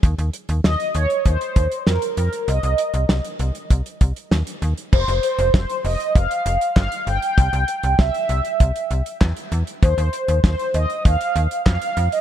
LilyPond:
<<
  \new Staff \with { instrumentName = "Analog polysynth" } { \time 4/4 \key c \phrygian \tempo 4 = 98 r4 ees''8 des''8 c''4 bes'8 bes'8 | ees''4 r2. | c''8 c''8 c''8 ees''8 f''4 f''8 g''8~ | g''4 e''2 r4 |
c''4 c''8 ees''8 f''4 f''8. ees''16 | }
  \new Staff \with { instrumentName = "FM bass" } { \clef bass \time 4/4 \key c \phrygian ees,16 ees,16 r16 ees,16 ees,16 r16 ees,16 r16 ees,16 r16 ees,16 r16 f,16 r16 f,16 r16 | c,16 c,16 r16 c,16 c,16 r16 c,16 r16 c,16 r16 c,16 r16 ees,16 r16 ees,16 r16 | f,,16 f,,16 r16 f,,16 f,,16 r16 f,,16 r16 f,,16 r16 f,,16 r16 g,,16 r16 g,,16 r16 | c,16 c,16 r16 c,16 c,16 r16 c,16 r16 c,16 r16 c,16 r16 e,16 r16 e,16 r16 |
ees,16 ees,16 r16 ees,16 ees,16 r16 ees,16 r16 ees,16 r16 ees,16 r16 f,16 r16 f,16 r16 | }
  \new DrumStaff \with { instrumentName = "Drums" } \drummode { \time 4/4 <hh bd>16 hh16 hh16 hh16 sn16 hh16 hh16 hh16 <hh bd>16 hh16 <hh bd>16 hh16 sn16 hh16 hh16 hh16 | hh16 hh16 hh16 hh16 sn16 hh16 hh16 hh16 <hh bd>16 hh16 <hh bd>16 hh16 sn16 hh16 hh16 hh16 | <cymc bd>16 hh16 hh16 hh16 <bd sn>16 hh16 hho16 hh16 <hh bd>16 hh16 hh16 hh16 <hc bd sn>16 hh16 hh16 hh16 | <hh bd>16 hh16 hh16 hh16 <bd sn>16 hh16 hh16 hh16 <hh bd>16 hh16 hh16 hh16 <hc bd sn>16 hh16 hh16 hh16 |
<hh bd>16 hh16 hh16 hh16 <bd sn>16 hh16 hh16 hh16 <hh bd>16 hh16 hh16 hh16 <hc bd sn>16 hh16 hh16 hh16 | }
>>